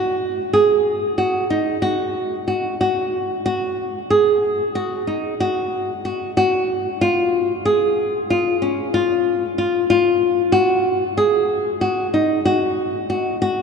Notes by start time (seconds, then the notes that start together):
Already playing: F#4
0.53 G#4
1.18 F#4
1.50 D#4
1.82 F#4
2.48 F#4
2.81 F#4
3.46 F#4
4.10 G#4
4.75 F#4
5.07 D#4
5.40 F#4
6.05 F#4
6.37 F#4
7.01 F4
7.65 G#4
8.30 F4
8.62 C#4
8.94 F4
9.58 F4
9.90 F4
10.52 F#4
11.17 G#4
11.81 F#4
12.14 D#4
12.45 F#4
13.10 F#4
13.42 F#4